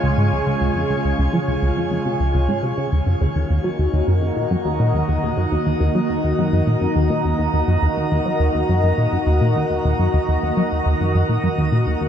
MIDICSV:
0, 0, Header, 1, 3, 480
1, 0, Start_track
1, 0, Key_signature, -6, "minor"
1, 0, Tempo, 576923
1, 507, Time_signature, 4, 2, 24, 8
1, 10056, End_track
2, 0, Start_track
2, 0, Title_t, "Analog synth pad"
2, 0, Program_c, 0, 89
2, 0, Note_on_c, 0, 49, 69
2, 0, Note_on_c, 0, 56, 73
2, 0, Note_on_c, 0, 65, 69
2, 0, Note_on_c, 0, 73, 66
2, 0, Note_on_c, 0, 80, 78
2, 2426, Note_off_c, 0, 49, 0
2, 2427, Note_on_c, 0, 51, 81
2, 2429, Note_off_c, 0, 56, 0
2, 2429, Note_off_c, 0, 65, 0
2, 2547, Note_on_c, 0, 58, 70
2, 2749, Note_on_c, 0, 66, 74
2, 2857, Note_on_c, 0, 82, 66
2, 2950, Note_on_c, 0, 75, 73
2, 3189, Note_off_c, 0, 80, 0
2, 3367, Note_off_c, 0, 73, 0
2, 10056, Note_off_c, 0, 51, 0
2, 10056, Note_off_c, 0, 58, 0
2, 10056, Note_off_c, 0, 66, 0
2, 10056, Note_off_c, 0, 75, 0
2, 10056, Note_off_c, 0, 82, 0
2, 10056, End_track
3, 0, Start_track
3, 0, Title_t, "Analog synth bass"
3, 0, Program_c, 1, 38
3, 23, Note_on_c, 1, 37, 104
3, 139, Note_off_c, 1, 37, 0
3, 144, Note_on_c, 1, 44, 78
3, 260, Note_off_c, 1, 44, 0
3, 265, Note_on_c, 1, 37, 78
3, 344, Note_off_c, 1, 37, 0
3, 383, Note_on_c, 1, 37, 72
3, 462, Note_off_c, 1, 37, 0
3, 505, Note_on_c, 1, 37, 83
3, 583, Note_off_c, 1, 37, 0
3, 625, Note_on_c, 1, 41, 79
3, 703, Note_off_c, 1, 41, 0
3, 746, Note_on_c, 1, 37, 103
3, 793, Note_off_c, 1, 37, 0
3, 868, Note_on_c, 1, 37, 69
3, 945, Note_off_c, 1, 37, 0
3, 986, Note_on_c, 1, 37, 99
3, 1064, Note_off_c, 1, 37, 0
3, 1107, Note_on_c, 1, 53, 77
3, 1154, Note_off_c, 1, 53, 0
3, 1227, Note_on_c, 1, 37, 79
3, 1304, Note_off_c, 1, 37, 0
3, 1348, Note_on_c, 1, 37, 76
3, 1425, Note_off_c, 1, 37, 0
3, 1468, Note_on_c, 1, 41, 79
3, 1581, Note_off_c, 1, 41, 0
3, 1588, Note_on_c, 1, 41, 77
3, 1665, Note_off_c, 1, 41, 0
3, 1708, Note_on_c, 1, 48, 74
3, 1785, Note_off_c, 1, 48, 0
3, 1828, Note_on_c, 1, 37, 75
3, 1941, Note_off_c, 1, 37, 0
3, 1947, Note_on_c, 1, 37, 105
3, 2061, Note_off_c, 1, 37, 0
3, 2065, Note_on_c, 1, 44, 76
3, 2180, Note_off_c, 1, 44, 0
3, 2185, Note_on_c, 1, 48, 84
3, 2263, Note_off_c, 1, 48, 0
3, 2308, Note_on_c, 1, 49, 100
3, 2385, Note_off_c, 1, 49, 0
3, 2429, Note_on_c, 1, 39, 83
3, 2506, Note_off_c, 1, 39, 0
3, 2547, Note_on_c, 1, 42, 78
3, 2625, Note_off_c, 1, 42, 0
3, 2668, Note_on_c, 1, 39, 98
3, 2714, Note_off_c, 1, 39, 0
3, 2790, Note_on_c, 1, 39, 72
3, 2866, Note_off_c, 1, 39, 0
3, 2909, Note_on_c, 1, 39, 103
3, 2986, Note_off_c, 1, 39, 0
3, 3028, Note_on_c, 1, 54, 74
3, 3074, Note_off_c, 1, 54, 0
3, 3149, Note_on_c, 1, 39, 73
3, 3225, Note_off_c, 1, 39, 0
3, 3270, Note_on_c, 1, 39, 74
3, 3346, Note_off_c, 1, 39, 0
3, 3390, Note_on_c, 1, 42, 83
3, 3503, Note_off_c, 1, 42, 0
3, 3510, Note_on_c, 1, 42, 80
3, 3586, Note_off_c, 1, 42, 0
3, 3630, Note_on_c, 1, 46, 72
3, 3706, Note_off_c, 1, 46, 0
3, 3747, Note_on_c, 1, 42, 93
3, 3794, Note_off_c, 1, 42, 0
3, 3868, Note_on_c, 1, 39, 99
3, 3982, Note_off_c, 1, 39, 0
3, 3989, Note_on_c, 1, 46, 78
3, 4102, Note_off_c, 1, 46, 0
3, 4109, Note_on_c, 1, 39, 78
3, 4185, Note_off_c, 1, 39, 0
3, 4230, Note_on_c, 1, 39, 76
3, 4306, Note_off_c, 1, 39, 0
3, 4350, Note_on_c, 1, 39, 86
3, 4426, Note_off_c, 1, 39, 0
3, 4468, Note_on_c, 1, 42, 78
3, 4545, Note_off_c, 1, 42, 0
3, 4588, Note_on_c, 1, 39, 100
3, 4634, Note_off_c, 1, 39, 0
3, 4709, Note_on_c, 1, 39, 74
3, 4785, Note_off_c, 1, 39, 0
3, 4829, Note_on_c, 1, 39, 103
3, 4905, Note_off_c, 1, 39, 0
3, 4949, Note_on_c, 1, 54, 71
3, 4994, Note_off_c, 1, 54, 0
3, 5071, Note_on_c, 1, 39, 72
3, 5146, Note_off_c, 1, 39, 0
3, 5190, Note_on_c, 1, 39, 72
3, 5266, Note_off_c, 1, 39, 0
3, 5310, Note_on_c, 1, 42, 81
3, 5423, Note_off_c, 1, 42, 0
3, 5430, Note_on_c, 1, 42, 79
3, 5506, Note_off_c, 1, 42, 0
3, 5548, Note_on_c, 1, 46, 70
3, 5625, Note_off_c, 1, 46, 0
3, 5666, Note_on_c, 1, 42, 98
3, 5713, Note_off_c, 1, 42, 0
3, 5786, Note_on_c, 1, 39, 99
3, 5901, Note_off_c, 1, 39, 0
3, 5905, Note_on_c, 1, 46, 81
3, 6020, Note_off_c, 1, 46, 0
3, 6027, Note_on_c, 1, 39, 78
3, 6104, Note_off_c, 1, 39, 0
3, 6145, Note_on_c, 1, 39, 71
3, 6223, Note_off_c, 1, 39, 0
3, 6265, Note_on_c, 1, 39, 81
3, 6343, Note_off_c, 1, 39, 0
3, 6387, Note_on_c, 1, 42, 80
3, 6464, Note_off_c, 1, 42, 0
3, 6507, Note_on_c, 1, 39, 93
3, 6553, Note_off_c, 1, 39, 0
3, 6628, Note_on_c, 1, 39, 72
3, 6705, Note_off_c, 1, 39, 0
3, 6749, Note_on_c, 1, 39, 103
3, 6825, Note_off_c, 1, 39, 0
3, 6867, Note_on_c, 1, 54, 75
3, 6914, Note_off_c, 1, 54, 0
3, 6985, Note_on_c, 1, 39, 75
3, 7063, Note_off_c, 1, 39, 0
3, 7108, Note_on_c, 1, 39, 76
3, 7185, Note_off_c, 1, 39, 0
3, 7228, Note_on_c, 1, 42, 77
3, 7342, Note_off_c, 1, 42, 0
3, 7348, Note_on_c, 1, 42, 81
3, 7425, Note_off_c, 1, 42, 0
3, 7469, Note_on_c, 1, 46, 74
3, 7545, Note_off_c, 1, 46, 0
3, 7589, Note_on_c, 1, 42, 103
3, 7634, Note_off_c, 1, 42, 0
3, 7707, Note_on_c, 1, 39, 99
3, 7821, Note_off_c, 1, 39, 0
3, 7828, Note_on_c, 1, 46, 81
3, 7942, Note_off_c, 1, 46, 0
3, 7951, Note_on_c, 1, 39, 84
3, 8026, Note_off_c, 1, 39, 0
3, 8071, Note_on_c, 1, 39, 74
3, 8147, Note_off_c, 1, 39, 0
3, 8192, Note_on_c, 1, 39, 83
3, 8267, Note_off_c, 1, 39, 0
3, 8311, Note_on_c, 1, 42, 77
3, 8386, Note_off_c, 1, 42, 0
3, 8431, Note_on_c, 1, 39, 97
3, 8476, Note_off_c, 1, 39, 0
3, 8553, Note_on_c, 1, 39, 73
3, 8628, Note_off_c, 1, 39, 0
3, 8676, Note_on_c, 1, 39, 100
3, 8749, Note_off_c, 1, 39, 0
3, 8794, Note_on_c, 1, 54, 75
3, 8837, Note_off_c, 1, 54, 0
3, 8915, Note_on_c, 1, 39, 78
3, 8988, Note_off_c, 1, 39, 0
3, 9033, Note_on_c, 1, 39, 78
3, 9107, Note_off_c, 1, 39, 0
3, 9153, Note_on_c, 1, 42, 75
3, 9264, Note_off_c, 1, 42, 0
3, 9275, Note_on_c, 1, 42, 81
3, 9348, Note_off_c, 1, 42, 0
3, 9392, Note_on_c, 1, 46, 72
3, 9467, Note_off_c, 1, 46, 0
3, 9511, Note_on_c, 1, 42, 100
3, 9556, Note_off_c, 1, 42, 0
3, 9631, Note_on_c, 1, 39, 102
3, 9743, Note_off_c, 1, 39, 0
3, 9750, Note_on_c, 1, 46, 79
3, 9863, Note_off_c, 1, 46, 0
3, 9869, Note_on_c, 1, 39, 76
3, 9946, Note_off_c, 1, 39, 0
3, 9991, Note_on_c, 1, 39, 77
3, 10056, Note_off_c, 1, 39, 0
3, 10056, End_track
0, 0, End_of_file